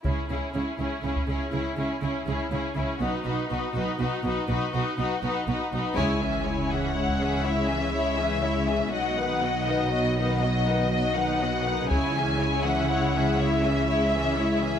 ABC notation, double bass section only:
X:1
M:12/8
L:1/8
Q:3/8=81
K:C#m
V:1 name="Double bass section" clef=bass
C,, C,, C,, C,, C,, C,, C,, C,, C,, C,, C,, C,, | B,,, B,,, B,,, B,,, B,,, B,,, B,,, B,,, B,,, B,,, B,,, B,,, | C,,12 | B,,,12 |
C,,12 |]